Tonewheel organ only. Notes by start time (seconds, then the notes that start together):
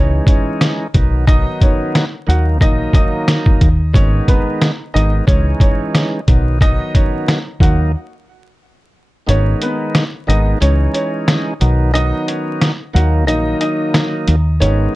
Already playing: E3 G#3 C#4 D#4
0.94 D#3 F#3 B3 D#4
1.27 D#3 F#3 B3 D#4
2.27 D#3 F#3 A#3 D#4
2.60 D#3 F#3 A#3 D#4
3.93 D#3 G#3 B3 D#4
4.94 D#3 G#3 B3 D#4
5.27 E3 G#3 C#4 D#4
6.27 D#3 F#3 B3 D#4
6.61 D#3 F#3 B3 D#4
7.60 D#3 F#3 A#3 D#4
9.27 D#3 G#3 B3 D#4
10.27 D#3 G#3 B3 D#4
10.61 E3 G#3 C#4 D#4
11.61 D#3 F#3 B3 D#4
11.94 D#3 F#3 B3 D#4
12.93 D#3 F#3 A#3 D#4
13.27 D#3 F#3 A#3 D#4
14.60 D#3 G#3 B3 D#4